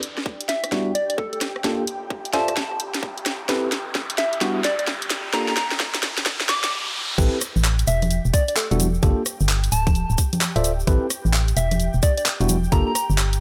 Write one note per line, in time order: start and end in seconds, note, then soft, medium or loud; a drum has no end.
0.00 6.72 G4 medium
0.00 6.72 G5 medium
0.00 open hi-hat loud
0.00 riser medium
0.18 snare soft
0.26 kick medium
0.41 closed hi-hat medium
0.49 0.78 E5 medium
0.49 snare soft
0.49 open hi-hat medium
0.64 cross-stick medium
0.64 closed hi-hat medium
0.72 0.91 G3 medium
0.72 0.91 B3 medium
0.72 0.91 D4 medium
0.72 0.91 E4 medium
0.72 0.91 F#4 medium
0.72 kick medium
0.72 snare soft
0.72 closed hi-hat medium
0.95 1.04 D5 medium
0.95 open hi-hat loud
1.10 1.15 D5 medium
1.10 closed hi-hat medium
1.18 1.28 A4 medium
1.18 kick medium
1.33 1.38 A4 medium
1.33 closed hi-hat soft
1.41 cross-stick medium
1.41 snare medium
1.41 open hi-hat loud
1.56 cross-stick medium
1.64 1.83 A#3 medium
1.64 1.83 D4 medium
1.64 1.83 F4 medium
1.64 1.83 G4 medium
1.64 1.83 A4 medium
1.64 kick medium
1.64 snare medium
1.64 closed hi-hat medium
1.87 open hi-hat medium
2.10 kick medium
2.25 closed hi-hat medium
2.33 2.52 F4 medium
2.33 2.52 A4 medium
2.33 2.52 C5 medium
2.33 2.52 D5 medium
2.33 2.52 E5 medium
2.33 2.80 A5 loud
2.33 snare medium
2.33 open hi-hat medium
2.48 cross-stick medium
2.48 closed hi-hat medium
2.57 kick medium
2.57 snare medium
2.57 closed hi-hat medium
2.71 cross-stick soft
2.80 open hi-hat loud
2.94 snare medium
2.94 closed hi-hat medium
3.03 kick medium
3.18 closed hi-hat soft
3.26 cross-stick medium
3.26 snare medium
3.26 open hi-hat loud
3.49 3.68 C4 medium
3.49 3.68 E4 medium
3.49 3.68 G4 medium
3.49 3.68 A4 medium
3.49 3.68 B4 medium
3.49 kick loud
3.49 snare medium
3.49 closed hi-hat medium
3.72 snare medium
3.72 open hi-hat medium
3.95 kick medium
3.95 snare medium
4.10 closed hi-hat medium
4.18 4.47 E5 medium
4.18 snare medium
4.18 open hi-hat medium
4.33 closed hi-hat medium
4.41 4.60 G3 medium
4.41 4.60 B3 medium
4.41 4.60 D4 medium
4.41 4.60 E4 medium
4.41 4.60 F#4 loud
4.41 kick loud
4.41 snare medium
4.41 closed hi-hat medium
4.64 4.74 D5 medium
4.64 snare medium
4.64 open hi-hat loud
4.79 4.84 D5 medium
4.79 closed hi-hat medium
4.87 kick loud
4.87 snare medium
5.02 closed hi-hat soft
5.10 snare medium
5.10 open hi-hat loud
5.33 5.52 A#3 medium
5.33 5.52 D4 medium
5.33 5.52 F4 medium
5.33 5.52 G4 medium
5.33 5.52 A4 medium
5.33 5.45 A#5 medium
5.33 kick loud
5.33 snare medium
5.33 closed hi-hat medium
5.48 5.54 A#5 medium
5.48 snare medium
5.57 5.66 A#5 medium
5.57 snare medium
5.57 open hi-hat medium
5.71 snare medium
5.80 kick loud
5.80 snare loud
5.95 snare medium
5.95 closed hi-hat medium
6.03 snare medium
6.03 open hi-hat medium
6.18 snare medium
6.18 closed hi-hat medium
6.26 kick medium
6.26 snare loud
6.26 closed hi-hat medium
6.41 snare medium
6.49 6.72 D6 medium
6.49 snare loud
6.49 open hi-hat loud
6.64 snare medium
6.64 closed hi-hat medium
7.18 7.30 A1 loud
7.18 7.37 C4 medium
7.18 7.37 E4 medium
7.18 7.37 G4 medium
7.18 13.40 G4 medium
7.18 7.37 A4 medium
7.18 7.37 B4 medium
7.18 13.40 G5 medium
7.18 kick loud
7.18 closed hi-hat medium
7.18 crash loud
7.18 shaker medium
7.41 cross-stick medium
7.41 open hi-hat loud
7.41 shaker medium
7.56 7.85 A1 loud
7.56 shaker soft
7.64 clap loud
7.64 shaker soft
7.79 closed hi-hat medium
7.79 shaker soft
7.87 8.20 E1 loud
7.87 8.16 E5 loud
7.87 open hi-hat loud
7.87 shaker medium
8.02 cross-stick soft
8.02 closed hi-hat medium
8.02 high conga medium
8.02 shaker soft
8.11 closed hi-hat medium
8.11 shaker medium
8.25 8.32 E1 medium
8.25 shaker soft
8.34 8.43 D5 medium
8.34 kick loud
8.34 open hi-hat loud
8.34 shaker medium
8.48 8.54 D5 medium
8.48 closed hi-hat medium
8.48 shaker soft
8.56 8.66 A4 medium
8.56 clap loud
8.56 shaker medium
8.71 9.00 E1 medium
8.71 8.87 G3 medium
8.71 8.87 B3 medium
8.71 8.87 D4 medium
8.71 8.87 E4 medium
8.71 8.87 F#4 medium
8.71 8.77 A4 medium
8.71 closed hi-hat medium
8.71 shaker soft
8.80 open hi-hat loud
8.80 high conga medium
8.80 shaker medium
8.94 shaker soft
9.03 9.14 G1 loud
9.03 9.21 A#3 medium
9.03 9.21 D4 medium
9.03 9.21 F4 medium
9.03 9.21 G4 medium
9.03 9.21 A4 medium
9.03 kick loud
9.03 closed hi-hat medium
9.03 shaker medium
9.26 cross-stick medium
9.26 open hi-hat loud
9.26 shaker medium
9.40 9.69 G1 loud
9.40 shaker soft
9.49 clap loud
9.49 shaker medium
9.64 closed hi-hat medium
9.64 shaker soft
9.72 10.05 D1 medium
9.72 10.18 A5 loud
9.72 open hi-hat loud
9.72 shaker loud
9.87 kick loud
9.87 cross-stick soft
9.87 closed hi-hat medium
9.87 high conga medium
9.87 shaker soft
9.95 closed hi-hat medium
9.95 shaker medium
10.10 10.16 D1 medium
10.10 shaker soft
10.18 kick medium
10.18 open hi-hat loud
10.18 shaker loud
10.33 closed hi-hat medium
10.33 high conga medium
10.33 shaker soft
10.41 clap loud
10.41 shaker medium
10.56 10.84 D1 medium
10.56 10.71 F4 medium
10.56 10.71 A4 medium
10.56 10.71 C5 medium
10.56 10.71 D5 medium
10.56 10.71 E5 medium
10.56 closed hi-hat soft
10.56 shaker soft
10.64 open hi-hat loud
10.64 shaker medium
10.80 shaker soft
10.87 10.99 A1 loud
10.87 11.06 C4 medium
10.87 11.06 E4 medium
10.87 11.06 G4 medium
10.87 11.06 A4 medium
10.87 11.06 B4 medium
10.87 kick loud
10.87 closed hi-hat medium
10.87 shaker medium
11.10 cross-stick medium
11.10 open hi-hat loud
11.10 shaker medium
11.25 11.54 A1 loud
11.25 shaker soft
11.33 clap loud
11.33 shaker medium
11.48 closed hi-hat medium
11.48 shaker soft
11.57 11.89 E1 loud
11.57 11.86 E5 loud
11.57 open hi-hat loud
11.57 shaker medium
11.71 cross-stick soft
11.71 closed hi-hat medium
11.71 high conga medium
11.71 shaker soft
11.80 closed hi-hat medium
11.80 shaker medium
11.94 12.01 E1 medium
11.94 shaker soft
12.03 12.12 D5 medium
12.03 kick loud
12.03 open hi-hat loud
12.03 shaker medium
12.18 12.23 D5 medium
12.18 closed hi-hat medium
12.18 shaker soft
12.26 clap loud
12.26 shaker medium
12.40 12.69 E1 medium
12.40 12.56 G3 medium
12.40 12.56 B3 medium
12.40 12.56 D4 medium
12.40 12.56 E4 medium
12.40 12.56 F#4 medium
12.40 closed hi-hat medium
12.40 shaker soft
12.49 open hi-hat loud
12.49 high conga medium
12.49 shaker loud
12.64 shaker soft
12.72 12.84 G1 loud
12.72 12.91 A#3 medium
12.72 12.91 D4 medium
12.72 12.91 F4 medium
12.72 12.91 G4 medium
12.72 12.91 A4 medium
12.72 12.84 A#5 medium
12.72 kick loud
12.72 closed hi-hat medium
12.72 shaker medium
12.87 12.92 A#5 medium
12.95 13.05 A#5 medium
12.95 cross-stick medium
12.95 open hi-hat medium
12.95 shaker loud
13.10 13.38 G1 loud
13.10 shaker soft
13.18 clap loud
13.18 shaker medium
13.33 closed hi-hat medium
13.33 shaker soft